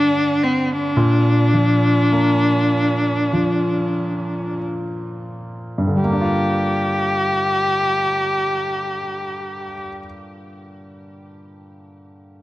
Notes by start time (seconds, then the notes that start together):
Already playing: D3 D4
0.44 C4
0.72 D4
0.96 A#2
1.54 F3
2.12 A#3
3.33 F3
5.78 G2
5.87 D3
5.95 G3
6.00 A#3 G4
6.12 D4
6.21 F4